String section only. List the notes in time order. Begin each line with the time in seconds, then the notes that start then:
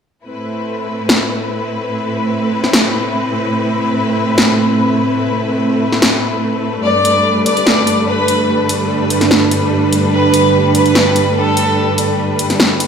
0.27 A2 A3 C4 E4 B4
6.85 G2 G3 D4 B4